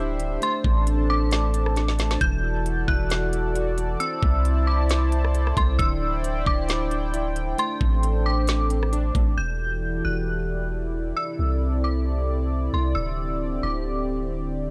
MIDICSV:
0, 0, Header, 1, 6, 480
1, 0, Start_track
1, 0, Key_signature, 1, "minor"
1, 0, Tempo, 447761
1, 450, Time_signature, 4, 2, 24, 8
1, 15764, End_track
2, 0, Start_track
2, 0, Title_t, "Synth bell"
2, 0, Program_c, 0, 98
2, 461, Note_on_c, 0, 84, 98
2, 1133, Note_off_c, 0, 84, 0
2, 1178, Note_on_c, 0, 86, 93
2, 2331, Note_off_c, 0, 86, 0
2, 2370, Note_on_c, 0, 91, 101
2, 3047, Note_off_c, 0, 91, 0
2, 3086, Note_on_c, 0, 90, 86
2, 3766, Note_off_c, 0, 90, 0
2, 4288, Note_on_c, 0, 88, 94
2, 4966, Note_off_c, 0, 88, 0
2, 5009, Note_on_c, 0, 86, 74
2, 5927, Note_off_c, 0, 86, 0
2, 5975, Note_on_c, 0, 84, 84
2, 6201, Note_off_c, 0, 84, 0
2, 6203, Note_on_c, 0, 88, 94
2, 6884, Note_off_c, 0, 88, 0
2, 6936, Note_on_c, 0, 86, 91
2, 7610, Note_off_c, 0, 86, 0
2, 8139, Note_on_c, 0, 84, 100
2, 8812, Note_off_c, 0, 84, 0
2, 8854, Note_on_c, 0, 86, 93
2, 10009, Note_off_c, 0, 86, 0
2, 10051, Note_on_c, 0, 91, 92
2, 10728, Note_off_c, 0, 91, 0
2, 10770, Note_on_c, 0, 90, 73
2, 11447, Note_off_c, 0, 90, 0
2, 11969, Note_on_c, 0, 88, 92
2, 12647, Note_off_c, 0, 88, 0
2, 12693, Note_on_c, 0, 86, 74
2, 13609, Note_off_c, 0, 86, 0
2, 13655, Note_on_c, 0, 84, 83
2, 13881, Note_off_c, 0, 84, 0
2, 13881, Note_on_c, 0, 88, 90
2, 14563, Note_off_c, 0, 88, 0
2, 14614, Note_on_c, 0, 86, 82
2, 15289, Note_off_c, 0, 86, 0
2, 15764, End_track
3, 0, Start_track
3, 0, Title_t, "Analog synth pad"
3, 0, Program_c, 1, 89
3, 0, Note_on_c, 1, 62, 73
3, 0, Note_on_c, 1, 67, 68
3, 0, Note_on_c, 1, 72, 72
3, 0, Note_on_c, 1, 76, 87
3, 408, Note_off_c, 1, 62, 0
3, 431, Note_off_c, 1, 67, 0
3, 431, Note_off_c, 1, 76, 0
3, 448, Note_on_c, 1, 81, 86
3, 449, Note_on_c, 1, 62, 80
3, 449, Note_on_c, 1, 69, 71
3, 2332, Note_off_c, 1, 72, 0
3, 2350, Note_off_c, 1, 62, 0
3, 2351, Note_off_c, 1, 69, 0
3, 2371, Note_on_c, 1, 69, 69
3, 2371, Note_on_c, 1, 74, 71
3, 2372, Note_on_c, 1, 66, 78
3, 4251, Note_off_c, 1, 81, 0
3, 4272, Note_off_c, 1, 66, 0
3, 4272, Note_off_c, 1, 69, 0
3, 4290, Note_on_c, 1, 64, 78
3, 4290, Note_on_c, 1, 72, 71
3, 4290, Note_on_c, 1, 81, 84
3, 6172, Note_off_c, 1, 74, 0
3, 6191, Note_off_c, 1, 64, 0
3, 6191, Note_off_c, 1, 81, 0
3, 6211, Note_on_c, 1, 64, 80
3, 6211, Note_on_c, 1, 74, 71
3, 6211, Note_on_c, 1, 79, 90
3, 8092, Note_off_c, 1, 72, 0
3, 8111, Note_off_c, 1, 64, 0
3, 8111, Note_off_c, 1, 74, 0
3, 8131, Note_on_c, 1, 69, 69
3, 8132, Note_on_c, 1, 62, 79
3, 8132, Note_on_c, 1, 72, 73
3, 10012, Note_off_c, 1, 79, 0
3, 10031, Note_off_c, 1, 69, 0
3, 10032, Note_off_c, 1, 62, 0
3, 10032, Note_off_c, 1, 72, 0
3, 10049, Note_on_c, 1, 64, 66
3, 10049, Note_on_c, 1, 66, 68
3, 10049, Note_on_c, 1, 69, 70
3, 10050, Note_on_c, 1, 52, 70
3, 10050, Note_on_c, 1, 67, 67
3, 10050, Note_on_c, 1, 74, 79
3, 11950, Note_off_c, 1, 69, 0
3, 11951, Note_off_c, 1, 52, 0
3, 11951, Note_off_c, 1, 66, 0
3, 11951, Note_off_c, 1, 67, 0
3, 11968, Note_on_c, 1, 48, 77
3, 11968, Note_on_c, 1, 69, 65
3, 11970, Note_on_c, 1, 60, 65
3, 13870, Note_off_c, 1, 48, 0
3, 13870, Note_off_c, 1, 69, 0
3, 13871, Note_off_c, 1, 60, 0
3, 13889, Note_on_c, 1, 67, 68
3, 13890, Note_on_c, 1, 50, 75
3, 13890, Note_on_c, 1, 60, 70
3, 15764, Note_off_c, 1, 50, 0
3, 15764, Note_off_c, 1, 60, 0
3, 15764, Note_off_c, 1, 64, 0
3, 15764, Note_off_c, 1, 67, 0
3, 15764, Note_off_c, 1, 74, 0
3, 15764, End_track
4, 0, Start_track
4, 0, Title_t, "Synth keys"
4, 0, Program_c, 2, 88
4, 0, Note_on_c, 2, 50, 68
4, 0, Note_on_c, 2, 62, 82
4, 0, Note_on_c, 2, 64, 97
4, 199, Note_off_c, 2, 50, 0
4, 212, Note_on_c, 2, 50, 75
4, 444, Note_on_c, 2, 57, 86
4, 449, Note_off_c, 2, 62, 0
4, 450, Note_off_c, 2, 64, 0
4, 451, Note_off_c, 2, 50, 0
4, 691, Note_on_c, 2, 60, 75
4, 1158, Note_off_c, 2, 60, 0
4, 1171, Note_on_c, 2, 60, 93
4, 1398, Note_off_c, 2, 57, 0
4, 1411, Note_on_c, 2, 57, 75
4, 1639, Note_off_c, 2, 60, 0
4, 1652, Note_on_c, 2, 60, 78
4, 1886, Note_on_c, 2, 62, 99
4, 2116, Note_off_c, 2, 57, 0
4, 2129, Note_on_c, 2, 57, 81
4, 2365, Note_on_c, 2, 52, 97
4, 2368, Note_off_c, 2, 62, 0
4, 2370, Note_off_c, 2, 57, 0
4, 2371, Note_off_c, 2, 60, 0
4, 2611, Note_on_c, 2, 64, 74
4, 3080, Note_off_c, 2, 64, 0
4, 3093, Note_on_c, 2, 64, 93
4, 3319, Note_off_c, 2, 52, 0
4, 3331, Note_on_c, 2, 52, 70
4, 3556, Note_off_c, 2, 64, 0
4, 3569, Note_on_c, 2, 64, 77
4, 3813, Note_on_c, 2, 66, 96
4, 4041, Note_off_c, 2, 52, 0
4, 4054, Note_on_c, 2, 52, 77
4, 4289, Note_on_c, 2, 60, 94
4, 4290, Note_off_c, 2, 64, 0
4, 4292, Note_off_c, 2, 52, 0
4, 4292, Note_off_c, 2, 66, 0
4, 4523, Note_on_c, 2, 64, 79
4, 4991, Note_off_c, 2, 64, 0
4, 5004, Note_on_c, 2, 64, 103
4, 5234, Note_off_c, 2, 60, 0
4, 5247, Note_on_c, 2, 60, 70
4, 5472, Note_off_c, 2, 64, 0
4, 5485, Note_on_c, 2, 64, 85
4, 5731, Note_on_c, 2, 69, 90
4, 5955, Note_off_c, 2, 60, 0
4, 5968, Note_on_c, 2, 60, 81
4, 6208, Note_off_c, 2, 64, 0
4, 6209, Note_off_c, 2, 60, 0
4, 6211, Note_off_c, 2, 69, 0
4, 6213, Note_on_c, 2, 50, 99
4, 6451, Note_on_c, 2, 62, 78
4, 6917, Note_off_c, 2, 62, 0
4, 6929, Note_on_c, 2, 62, 92
4, 7153, Note_off_c, 2, 50, 0
4, 7166, Note_on_c, 2, 50, 68
4, 7395, Note_off_c, 2, 62, 0
4, 7408, Note_on_c, 2, 62, 81
4, 7651, Note_on_c, 2, 64, 98
4, 7879, Note_off_c, 2, 50, 0
4, 7892, Note_on_c, 2, 50, 78
4, 8124, Note_on_c, 2, 57, 88
4, 8129, Note_off_c, 2, 62, 0
4, 8131, Note_off_c, 2, 50, 0
4, 8131, Note_off_c, 2, 64, 0
4, 8372, Note_on_c, 2, 60, 76
4, 8839, Note_off_c, 2, 60, 0
4, 8852, Note_on_c, 2, 60, 94
4, 9077, Note_off_c, 2, 57, 0
4, 9090, Note_on_c, 2, 57, 72
4, 9318, Note_off_c, 2, 60, 0
4, 9331, Note_on_c, 2, 60, 80
4, 9565, Note_on_c, 2, 62, 103
4, 9795, Note_off_c, 2, 57, 0
4, 9808, Note_on_c, 2, 57, 80
4, 10048, Note_off_c, 2, 62, 0
4, 10049, Note_off_c, 2, 57, 0
4, 10051, Note_off_c, 2, 60, 0
4, 15764, End_track
5, 0, Start_track
5, 0, Title_t, "808-style bass"
5, 0, Program_c, 3, 38
5, 0, Note_on_c, 3, 26, 102
5, 407, Note_off_c, 3, 26, 0
5, 690, Note_on_c, 3, 33, 111
5, 2328, Note_off_c, 3, 33, 0
5, 2370, Note_on_c, 3, 28, 117
5, 3061, Note_off_c, 3, 28, 0
5, 3089, Note_on_c, 3, 28, 103
5, 4247, Note_off_c, 3, 28, 0
5, 4530, Note_on_c, 3, 36, 107
5, 5927, Note_off_c, 3, 36, 0
5, 5970, Note_on_c, 3, 36, 104
5, 6201, Note_off_c, 3, 36, 0
5, 6211, Note_on_c, 3, 26, 117
5, 6902, Note_off_c, 3, 26, 0
5, 6930, Note_on_c, 3, 26, 107
5, 8088, Note_off_c, 3, 26, 0
5, 8370, Note_on_c, 3, 33, 104
5, 9767, Note_off_c, 3, 33, 0
5, 9808, Note_on_c, 3, 33, 102
5, 10040, Note_off_c, 3, 33, 0
5, 10051, Note_on_c, 3, 28, 105
5, 10742, Note_off_c, 3, 28, 0
5, 10773, Note_on_c, 3, 28, 102
5, 11929, Note_off_c, 3, 28, 0
5, 12211, Note_on_c, 3, 36, 102
5, 13608, Note_off_c, 3, 36, 0
5, 13651, Note_on_c, 3, 36, 101
5, 13881, Note_off_c, 3, 36, 0
5, 13891, Note_on_c, 3, 26, 108
5, 14582, Note_off_c, 3, 26, 0
5, 14612, Note_on_c, 3, 26, 98
5, 15764, Note_off_c, 3, 26, 0
5, 15764, End_track
6, 0, Start_track
6, 0, Title_t, "Drums"
6, 210, Note_on_c, 9, 42, 70
6, 317, Note_off_c, 9, 42, 0
6, 451, Note_on_c, 9, 42, 88
6, 558, Note_off_c, 9, 42, 0
6, 691, Note_on_c, 9, 36, 89
6, 798, Note_off_c, 9, 36, 0
6, 931, Note_on_c, 9, 42, 78
6, 1039, Note_off_c, 9, 42, 0
6, 1408, Note_on_c, 9, 42, 77
6, 1421, Note_on_c, 9, 38, 116
6, 1515, Note_off_c, 9, 42, 0
6, 1528, Note_off_c, 9, 38, 0
6, 1650, Note_on_c, 9, 42, 82
6, 1757, Note_off_c, 9, 42, 0
6, 1783, Note_on_c, 9, 37, 90
6, 1890, Note_off_c, 9, 37, 0
6, 1891, Note_on_c, 9, 42, 73
6, 1901, Note_on_c, 9, 38, 61
6, 1998, Note_off_c, 9, 42, 0
6, 2008, Note_off_c, 9, 38, 0
6, 2020, Note_on_c, 9, 38, 67
6, 2127, Note_off_c, 9, 38, 0
6, 2130, Note_on_c, 9, 42, 69
6, 2141, Note_on_c, 9, 38, 94
6, 2237, Note_off_c, 9, 42, 0
6, 2248, Note_off_c, 9, 38, 0
6, 2260, Note_on_c, 9, 38, 94
6, 2367, Note_off_c, 9, 38, 0
6, 2369, Note_on_c, 9, 42, 84
6, 2370, Note_on_c, 9, 36, 116
6, 2476, Note_off_c, 9, 42, 0
6, 2477, Note_off_c, 9, 36, 0
6, 2850, Note_on_c, 9, 42, 78
6, 2958, Note_off_c, 9, 42, 0
6, 3089, Note_on_c, 9, 36, 93
6, 3196, Note_off_c, 9, 36, 0
6, 3325, Note_on_c, 9, 42, 77
6, 3339, Note_on_c, 9, 38, 120
6, 3433, Note_off_c, 9, 42, 0
6, 3446, Note_off_c, 9, 38, 0
6, 3569, Note_on_c, 9, 42, 80
6, 3676, Note_off_c, 9, 42, 0
6, 3811, Note_on_c, 9, 42, 76
6, 3918, Note_off_c, 9, 42, 0
6, 4049, Note_on_c, 9, 42, 69
6, 4156, Note_off_c, 9, 42, 0
6, 4290, Note_on_c, 9, 42, 85
6, 4397, Note_off_c, 9, 42, 0
6, 4530, Note_on_c, 9, 36, 88
6, 4637, Note_off_c, 9, 36, 0
6, 4771, Note_on_c, 9, 42, 77
6, 4878, Note_off_c, 9, 42, 0
6, 5246, Note_on_c, 9, 42, 79
6, 5260, Note_on_c, 9, 38, 118
6, 5354, Note_off_c, 9, 42, 0
6, 5367, Note_off_c, 9, 38, 0
6, 5491, Note_on_c, 9, 42, 78
6, 5598, Note_off_c, 9, 42, 0
6, 5623, Note_on_c, 9, 37, 95
6, 5730, Note_on_c, 9, 42, 74
6, 5731, Note_off_c, 9, 37, 0
6, 5837, Note_off_c, 9, 42, 0
6, 5864, Note_on_c, 9, 37, 83
6, 5969, Note_on_c, 9, 36, 92
6, 5969, Note_on_c, 9, 42, 70
6, 5971, Note_off_c, 9, 37, 0
6, 6076, Note_off_c, 9, 36, 0
6, 6076, Note_off_c, 9, 42, 0
6, 6210, Note_on_c, 9, 42, 83
6, 6211, Note_on_c, 9, 36, 115
6, 6317, Note_off_c, 9, 42, 0
6, 6318, Note_off_c, 9, 36, 0
6, 6691, Note_on_c, 9, 42, 79
6, 6799, Note_off_c, 9, 42, 0
6, 6930, Note_on_c, 9, 36, 95
6, 7037, Note_off_c, 9, 36, 0
6, 7167, Note_on_c, 9, 42, 74
6, 7180, Note_on_c, 9, 38, 117
6, 7274, Note_off_c, 9, 42, 0
6, 7288, Note_off_c, 9, 38, 0
6, 7410, Note_on_c, 9, 42, 80
6, 7518, Note_off_c, 9, 42, 0
6, 7651, Note_on_c, 9, 42, 74
6, 7758, Note_off_c, 9, 42, 0
6, 7890, Note_on_c, 9, 42, 70
6, 7998, Note_off_c, 9, 42, 0
6, 8130, Note_on_c, 9, 42, 84
6, 8238, Note_off_c, 9, 42, 0
6, 8370, Note_on_c, 9, 36, 87
6, 8477, Note_off_c, 9, 36, 0
6, 8610, Note_on_c, 9, 42, 79
6, 8718, Note_off_c, 9, 42, 0
6, 9085, Note_on_c, 9, 42, 79
6, 9098, Note_on_c, 9, 38, 119
6, 9192, Note_off_c, 9, 42, 0
6, 9205, Note_off_c, 9, 38, 0
6, 9329, Note_on_c, 9, 42, 79
6, 9436, Note_off_c, 9, 42, 0
6, 9463, Note_on_c, 9, 37, 93
6, 9570, Note_off_c, 9, 37, 0
6, 9571, Note_on_c, 9, 42, 76
6, 9678, Note_off_c, 9, 42, 0
6, 9808, Note_on_c, 9, 36, 91
6, 9808, Note_on_c, 9, 42, 66
6, 9915, Note_off_c, 9, 36, 0
6, 9916, Note_off_c, 9, 42, 0
6, 15764, End_track
0, 0, End_of_file